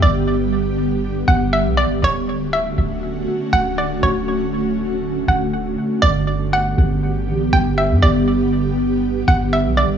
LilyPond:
<<
  \new Staff \with { instrumentName = "Synth pluck" } { \time 4/4 \key g \lydian \tempo 4 = 120 d''4 r4. fis''8 e''8 d''8 | cis''4 e''2 fis''8 d''8 | cis''4 r4. fis''8 r4 | d''4 fis''2 g''8 e''8 |
d''4 r4. fis''8 e''8 d''8 | }
  \new Staff \with { instrumentName = "Ambient pad" } { \time 4/4 \key g \lydian << { <g b g'>1 | <a cis' fis'>1~ | <a cis' fis'>1 | <g b g'>1~ |
<g b g'>1 | } \\ { d1~ | d1~ | d1~ | d1~ |
d1 | } >> }
  \new Staff \with { instrumentName = "808-style bass" } { \clef bass \time 4/4 \key g \lydian g,,2~ g,,8 g,,8. b,,16. g,,16. | d,,4. d,,4 r8 d,,4 | d,,2~ d,,8 d,,4 r8 | g,,4. g,,4 a,,8 g,,8. g,16 |
g,,2~ g,,8 g,,8. b,,16. g,,16. | }
>>